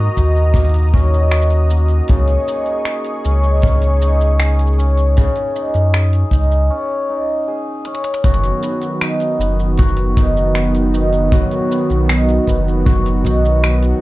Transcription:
Already playing: hammered dulcimer D#3 A#3 C#4 D#4 F#4, analog synth pad F#4 D#5 A#5 D#6
0.17 sub bass D#2, hammered dulcimer D#4, kick, shaker
0.36 shaker
0.54 hammered dulcimer A#3, kick, open hi-hat, shaker
0.60 open hi-hat
0.65 open hi-hat
0.69 open hi-hat
0.74 open hi-hat, shaker
0.83 open hi-hat
0.89 open hi-hat
0.94 hammered dulcimer C#4, kick
1.13 hammered dulcimer D#4, shaker
1.31 hammered dulcimer F#4, finger snap, open hi-hat
1.42 shaker
1.51 open hi-hat, shaker
1.70 hammered dulcimer A#3, shaker
1.89 open hi-hat, shaker
2.08 sub bass C#2, hammered dulcimer C#3 G#4, analog synth pad G#4 C#6, kick, open hi-hat, shaker
2.28 open hi-hat, shaker
2.48 hammered dulcimer D#4, shaker
2.66 open hi-hat
2.85 hammered dulcimer G#4, finger snap, open hi-hat, shaker
3.05 open hi-hat, shaker
3.24 sub bass C#2, hammered dulcimer C#4, shaker
3.44 hammered dulcimer D#4, shaker
3.62 hammered dulcimer C#4, kick, open hi-hat, shaker
3.82 open hi-hat, shaker
4.01 hammered dulcimer D#4, shaker
4.21 shaker
4.40 hammered dulcimer G#4, finger snap, open hi-hat, shaker
4.59 open hi-hat, shaker
4.67 shaker
4.73 shaker
4.78 hammered dulcimer C#4, shaker
4.98 open hi-hat, shaker
5.17 hammered dulcimer C#3 G#4, kick, open hi-hat, shaker
5.36 open hi-hat, shaker
5.55 hammered dulcimer D#4, shaker
5.74 sub bass F#2, open hi-hat, shaker
5.93 hammered dulcimer G#4, finger snap, open hi-hat, shaker
6.13 open hi-hat, shaker
6.31 sub bass C#2, hammered dulcimer D#4, kick, shaker
6.52 shaker
6.70 hammered dulcimer C#4
7.10 hammered dulcimer D#4
7.48 hammered dulcimer G#4
7.85 hammered dulcimer C#4, closed hi-hat
7.95 closed hi-hat
8.04 closed hi-hat
8.14 closed hi-hat
8.23 sub bass F#1, hammered dulcimer F#2 F#4, analog synth pad D#3 F#3 B3 F#4, kick, closed hi-hat, open hi-hat, shaker
8.34 closed hi-hat
8.44 open hi-hat, shaker
8.63 hammered dulcimer B3, shaker
8.82 open hi-hat, shaker
9.01 hammered dulcimer D#4, finger snap, open hi-hat, shaker
9.20 open hi-hat, shaker
9.39 sub bass F#1, hammered dulcimer B3, shaker
9.60 shaker
9.78 hammered dulcimer F#4, kick, open hi-hat, shaker
9.88 shaker
9.97 open hi-hat
10.16 hammered dulcimer D#4, kick, shaker
10.37 shaker
10.55 hammered dulcimer B3, finger snap, open hi-hat, shaker
10.75 open hi-hat, shaker
10.94 hammered dulcimer D#4, shaker
11.13 open hi-hat, shaker
11.32 hammered dulcimer F#2 F#4, kick, open hi-hat, shaker
11.52 open hi-hat, shaker
11.71 hammered dulcimer B3, shaker
11.90 sub bass B1, open hi-hat, shaker
12.09 hammered dulcimer D#4, finger snap, open hi-hat, shaker
12.29 open hi-hat, shaker
12.47 sub bass F#1, hammered dulcimer B3, kick, shaker
12.68 shaker
12.86 hammered dulcimer F#4, kick, open hi-hat, shaker
13.06 open hi-hat, shaker
13.24 sub bass B1, hammered dulcimer D#4, kick, shaker
13.45 shaker
13.62 hammered dulcimer B3, finger snap, open hi-hat, shaker
13.83 open hi-hat, shaker

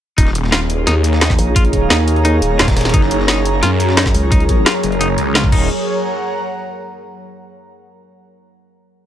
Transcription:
0.18 detuned saw bass D#1, clean electric guitar D#4, ambient pad D#4 A#4 F5, analog synth pad G#4, kick, closed hi-hat
0.27 snare
0.35 detuned saw bass D#1, closed hi-hat
0.44 snare
0.52 clean electric guitar F4, analog synth pad C#5, snare, closed hi-hat
0.63 analog synth pad A#5
0.70 closed hi-hat
0.87 detuned saw bass D#2, clean electric guitar D#4, snare, closed hi-hat
1.04 closed hi-hat
1.13 snare
1.21 clean electric guitar D#4, snare, closed hi-hat, open hi-hat
1.30 kick, snare
1.39 wobble bass A#1, closed hi-hat, open hi-hat
1.56 clean electric guitar F4, kick, closed hi-hat
1.65 closed hi-hat
1.73 kick, closed hi-hat
1.90 wobble bass D#2, clean electric guitar D#4, snare, closed hi-hat
2.08 closed hi-hat
2.16 closed hi-hat
2.25 clean electric guitar D#4, closed hi-hat
2.42 wobble bass D#1, closed hi-hat
2.59 detuned saw bass D#1, clean electric guitar F4, snare, closed hi-hat
2.68 kick, snare, closed hi-hat
2.77 snare, closed hi-hat, open hi-hat
2.81 snare, closed hi-hat
2.85 snare, closed hi-hat
2.89 snare, closed hi-hat
2.94 detuned saw bass F#1, ambient pad F#3 G#4, clean electric guitar D#4, kick, closed hi-hat
3.02 snare
3.11 detuned saw bass F#1, closed hi-hat
3.20 snare
3.28 clean electric guitar D#4, snare, closed hi-hat
3.45 closed hi-hat
3.63 detuned saw bass F#2, clean electric guitar F4, snare, closed hi-hat
3.80 closed hi-hat
3.89 snare
3.97 clean electric guitar D#4, snare, closed hi-hat, open hi-hat
4.06 kick, snare
4.14 wobble bass C#2, closed hi-hat, open hi-hat
4.32 clean electric guitar D#4, kick, closed hi-hat
4.40 closed hi-hat
4.49 kick, closed hi-hat
4.66 clean electric guitar F4, snare, closed hi-hat
4.83 detuned saw bass F#1, closed hi-hat
4.92 closed hi-hat
5.01 clean electric guitar D#4, closed hi-hat
5.18 detuned saw bass C#2, closed hi-hat
5.35 clean electric guitar F4, snare, closed hi-hat
5.44 kick
5.52 detuned saw bass D#1, clean electric guitar D#4, analog synth pad G#4, kick, crash
5.58 analog synth pad C#5
5.80 analog synth pad F#5
5.85 analog synth pad A#5

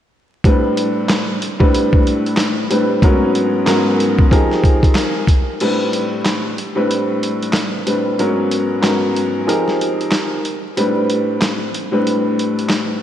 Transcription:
0.44 upright piano A2 G3 C4 D4 B4, kick, closed hi-hat
0.77 closed hi-hat
1.09 snare, clap, closed hi-hat
1.42 closed hi-hat
1.59 upright piano A2 G3 C4 D4 B4, kick
1.75 closed hi-hat
1.93 kick
2.07 closed hi-hat
2.26 closed hi-hat
2.37 snare, clap, closed hi-hat
2.70 upright piano A2 G3 C4 D4 B4, closed hi-hat
3.02 upright piano G#2 F#3 B3 C#4 A#4, kick, closed hi-hat
3.35 closed hi-hat
3.66 upright piano G#2 F#3 B3 C#4 A#4, snare, clap, closed hi-hat
4.00 closed hi-hat
4.18 kick
4.31 upright piano F3 C4 D#4 G4 G#4 A#4, kick, closed hi-hat
4.51 snare
4.64 kick, closed hi-hat
4.83 kick, closed hi-hat
4.95 snare, clap, closed hi-hat
5.27 kick, closed hi-hat
5.60 upright piano A2 G3 C4 D4 B4, closed hi-hat, crash
5.93 closed hi-hat
6.25 snare, clap, closed hi-hat
6.58 closed hi-hat
6.75 upright piano A2 G3 C4 D4 B4
6.91 closed hi-hat
7.23 closed hi-hat
7.43 closed hi-hat
7.53 snare, clap, closed hi-hat
7.86 upright piano A2 G3 C4 D4 B4, closed hi-hat
8.19 upright piano G#2 F#3 B3 C#4 A#4, closed hi-hat
8.52 closed hi-hat
8.81 upright piano G#2 F#3 B3 C#4 A#4, snare, clap, closed hi-hat
9.16 closed hi-hat
9.47 upright piano F3 C4 D#4 G4 G#4 A#4, closed hi-hat
9.68 snare
9.81 closed hi-hat
10.01 closed hi-hat
10.12 snare, clap, closed hi-hat
10.45 closed hi-hat
10.77 upright piano A2 G3 C4 D4 B4, closed hi-hat
11.10 closed hi-hat
11.42 snare, clap, closed hi-hat
11.74 closed hi-hat
11.91 upright piano A2 G3 C4 D4 B4
12.07 closed hi-hat
12.39 closed hi-hat
12.59 closed hi-hat
12.70 snare, clap, closed hi-hat

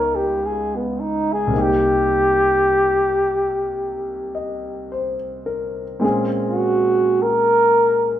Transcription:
Already playing: grand piano C#2 C#3 B3 D#4 F4, flugelhorn A#4
0.15 flugelhorn G4
0.46 flugelhorn G#4
0.76 flugelhorn B3
1.00 flugelhorn D#4
1.33 flugelhorn G#4
1.47 grand piano C2 C3
1.53 grand piano A#3 D#4
1.58 grand piano G4, flugelhorn G4
4.35 grand piano D#5
4.92 grand piano C5
5.46 grand piano A#4
6.00 grand piano A#2 G#3 C4 C#4
6.04 grand piano G#4
6.48 flugelhorn F#4
7.22 flugelhorn A#4

